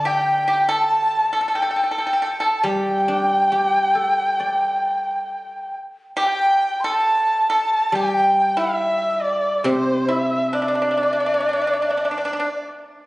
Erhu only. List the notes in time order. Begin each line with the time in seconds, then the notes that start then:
0.07 G5
0.49 G5
0.69 A5
1.55 G5
1.93 A5
2.00 G5
2.41 A5
2.64 G5
6.23 G5
6.89 A5
7.54 A5
7.95 G5
8.58 E5
9.22 D5
9.66 C5
10.10 E5
10.54 D5